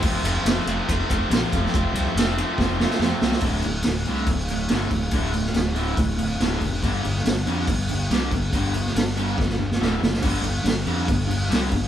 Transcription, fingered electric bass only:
X:1
M:4/4
L:1/8
Q:1/4=141
K:Dm
V:1 name="Fingered electric bass" clef=bass
F,,, F,,, F,,, F,,, F,,, F,,, B,,, F,,, | F,,, C,, F,,,2 F,,,2 F,, C,, | D,,, D,,, D,,, C,, D,,,2 G,,, D,,, | D,,,2 D,,,2 D,,,2 D,,, F,,, |
G,,, G,,, G,,, F,, G,,,2 C,, G,,, | G,,,2 G,,,2 G,,,2 D,,, ^F,,, | G,,, G,,, G,,, F,, G,,,2 C,, G,,, |]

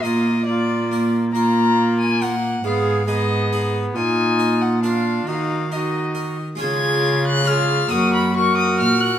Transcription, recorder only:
X:1
M:3/4
L:1/8
Q:1/4=137
K:Bbphr
V:1 name="Recorder"
F2 F4 | F4- F z | A2 A4 | F4 F2 |
G2 G3 z | A4 A2 | B2 B4 |]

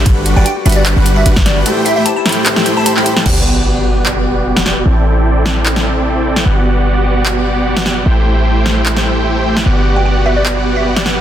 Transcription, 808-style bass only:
X:1
M:4/4
L:1/16
Q:"Swing 16ths" 1/4=150
K:G
V:1 name="808-style bass" clef=bass
G,,,3 G,,, z2 G,,,3 G,,,3 G,,,4 | z16 | G,,,16 | A,,,16 |
G,,,16 | A,,,16 | G,,,16 |]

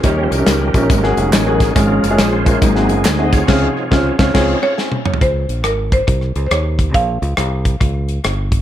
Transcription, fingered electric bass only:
X:1
M:4/4
L:1/8
Q:"Swing" 1/4=139
K:Db
V:1 name="Fingered electric bass" clef=bass
E,, C,, D,, B,,, A,,, F,,, =A,,,2 | A,,, G,,, B,,,2 A,,, G,,, =D,,2 | D,, z D,, D,, D,, z3 | D,, B,,, A,,,2 C,, D,, E,,2 |
B,,, D,, C,,2 D,,2 =G,,,2 |]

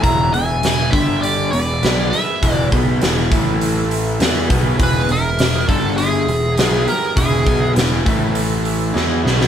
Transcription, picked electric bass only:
X:1
M:4/4
L:1/8
Q:1/4=101
K:Emix
V:1 name="Picked electric bass" clef=bass
E,,, E,,, E,,, =G,,,2 E,,, B,,, z | E,,, B,,, E,,, A,,,3 E,, B,,, | E,,, E,,, E,,, =G,,,2 E,,, B,,, z | E,,, B,,, E,,, A,,,3 E,, B,,, |]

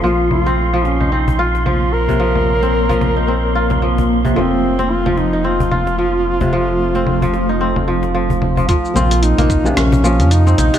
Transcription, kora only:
X:1
M:4/4
L:1/16
Q:"Swing 16ths" 1/4=111
K:none
V:1 name="Kora" clef=bass
F, z2 C2 F, z _E C z F2 F, z2 C, | F, z2 C2 F, z _E C z F2 F, z2 C, | F, z2 C2 F, z _E C z F2 F, z2 C, | F, z2 C2 F, z _E C z F, z F, z2 F, |
F, z C3 _B, z C, z2 F,3 C _E C, |]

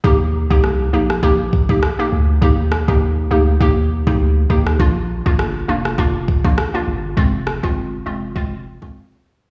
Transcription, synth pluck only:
X:1
M:4/4
L:1/16
Q:"Swing 16ths" 1/4=101
K:Eb
V:1 name="Synth pluck"
[B,EG] z2 [B,EG]3 [B,EG]2 [B,EG] z2 [B,EG] z [B,EG] z2 | [B,EG] z2 [B,EG]3 [B,EG]2 [B,EG] z2 [B,EG]3 [B,EG]2 | [B,DF] z2 [B,DF]3 [B,DF]2 [B,DF] z2 [B,DF] z [B,DF] z2 | [A,CF] z2 [A,CF]3 [A,CF]2 [A,CF] z2 [A,CF] z4 |]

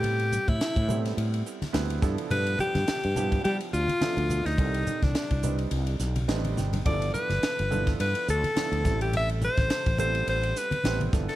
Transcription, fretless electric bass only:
X:1
M:4/4
L:1/16
Q:"Swing 16ths" 1/4=105
K:Am
V:1 name="Fretless electric bass" clef=bass
A,,3 A,, z A,,3 A,,2 z2 D,,2 G,, z | G,,2 z G,, z G,,3 G, z D,, z2 D,,2 D,, | C,,2 z C,, z C,,3 C,,2 B,,,2 A,,,2 G,,,2 | G,,,2 z G,,, z G,,,3 G,, z D,, z2 D,, A,,,2- |
A,,,3 A,,, z A,,,3 A,,,2 z2 A,,,2 G,,, z |]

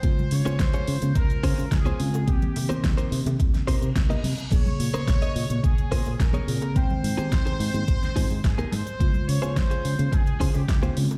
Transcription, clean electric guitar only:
X:1
M:4/4
L:1/16
Q:1/4=107
K:Dblyd
V:1 name="Clean electric guitar"
z3 [DFAc] z [DFAd] z4 [DFAc]2 z [DFAc] z2 | z3 [EGBc] z [EGBc] z4 [EGBc]2 z [EGBe] z2 | z3 [DABc] z [DABe] z4 [DABc]2 z [DABd] z2 | z3 [EGAc] z [EGAc] z4 [EGAc]2 z [EGAB] z2 |
z3 [DFAc] z [DFAc] z4 [DFAc]2 z [DFAc] z2 |]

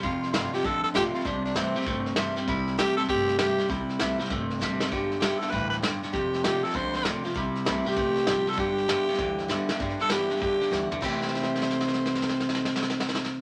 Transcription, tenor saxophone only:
X:1
M:4/4
L:1/8
Q:"Swing" 1/4=196
K:C
V:1 name="Tenor saxophone"
F2 F G A A G F | D D C4 z2 | E2 G A G2 G2 | E4 z4 |
G2 G A B B z2 | G2 G A c c z2 | E2 E G4 A | G6- G z |
z A G2 G3 z | c8- | c8 |]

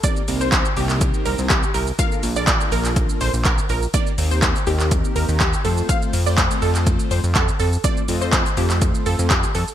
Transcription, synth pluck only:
X:1
M:4/4
L:1/16
Q:1/4=123
K:Fmix
V:1 name="Synth pluck"
d2 z c c2 G z3 B z G z B z | f2 z d d2 B z3 c z B z B z | d2 z c c2 G z3 B z G z A z | f2 z d c2 A z3 c z A z A z |
d2 z c c2 G z3 A z G z A z |]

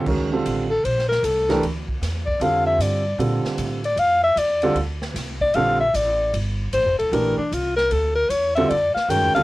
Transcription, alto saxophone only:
X:1
M:4/4
L:1/8
Q:"Swing" 1/4=153
K:Gdor
V:1 name="Alto saxophone"
z3 A c B A2 | z3 d f e d2 | z3 d f e d2 | z3 d f e d2 |
z2 c A B D F B | A B ^c e d f g f |]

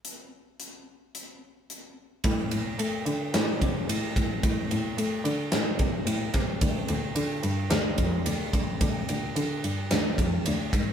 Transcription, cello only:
X:1
M:4/4
L:1/8
Q:1/4=110
K:Am
V:1 name="Cello" clef=bass
z8 | A,, A,, A, D, A,, C, A,, A,, | A,, A,, A, D, A,, C, A,, C, | D,, D,, D, G,, D,, F,, D,, D,, |
D,, D,, D, G,, D,, F,, D,, ^G,, |]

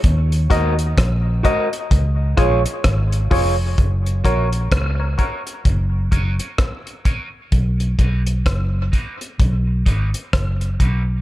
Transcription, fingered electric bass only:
X:1
M:4/4
L:1/16
Q:"Swing 16ths" 1/4=64
K:F#
V:1 name="Fingered electric bass" clef=bass
D,,2 D,,2 A,,,2 z2 C,,2 A,,, z G,,,2 E,,,2 | F,,,2 A,,,2 C,,2 z2 F,,,2 F,,, z4 z | B,,,2 B,,,2 F,,,2 z2 B,,,2 G,,, z F,,,2 B,,,2 |]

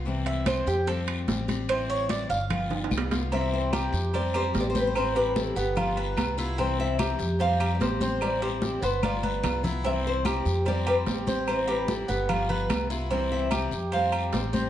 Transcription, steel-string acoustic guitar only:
X:1
M:4/4
L:1/8
Q:1/4=147
K:C
V:1 name="Steel-string acoustic guitar"
[C,E,G,CE]2 [E,G,CE] z [F,G,CG]2 [F,G,CG] [G,CG] | [E,G,CE]2 [E,G,CE] z [G,B,F]2 [G,B,F] [B,F] | [C,E,G,CE]2 [E,G,CE] z [F,G,CG]2 [F,G,CG] [G,CG] | [E,G,CE]2 [E,G,CE] z [G,B,F]2 [G,B,F] [B,F] |
[C,E,G,CE]2 [E,G,CE] z [F,G,CG]2 [F,G,CG] [G,CG] | [E,G,CE]2 [E,G,CE] z [G,B,F]2 [G,B,F] [B,F] | [C,E,G,CE]2 [E,G,CE] z [F,G,CG]2 [F,G,CG] [G,CG] | [E,G,CE]2 [E,G,CE] z [G,B,F]2 [G,B,F] [B,F] |
[C,E,G,CE]2 [E,G,CE] z [F,G,CG]2 [F,G,CG] [G,CG] |]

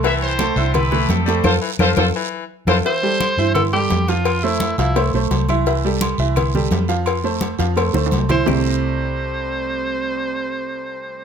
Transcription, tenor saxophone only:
X:1
M:4/4
L:1/8
Q:1/4=171
K:C
V:1 name="Tenor saxophone"
z8 | z8 | c4 A G2 F- | F E2 E2 z3 |
z8 | z6 z c | c8- | c8 |]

